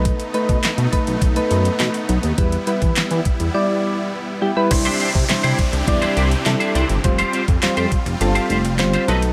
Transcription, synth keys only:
X:1
M:4/4
L:1/16
Q:1/4=103
K:Flyd
V:1 name="Synth keys"
[A,^DB] z [A,DB]2 z2 [A,DB]2 z [A,DB]4 z3 | [G,EB] z [G,EB]4 z2 [G,Ed]4 z2 [G,EG] [G,EB] | [G,DEc]2 z2 [G,DEc]2 z2 [G,DEd]2 z2 [G,DEA]2 z2 | [G,CFc]2 z2 [G,CFc]2 z2 [G,CFA]2 z2 [G,CFc]2 [^F,B,^DA]2 |]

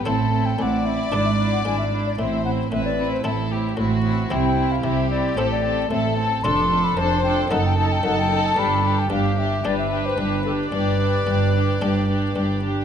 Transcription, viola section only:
X:1
M:4/4
L:1/8
Q:1/4=113
K:Ador
V:1 name="Viola section"
C C C C D D D D | C C C C C C C C | [K:Gmix] C C C C C C C C | D D D D ^D D D D |
D D D D D D D D | D D D D D D D D |]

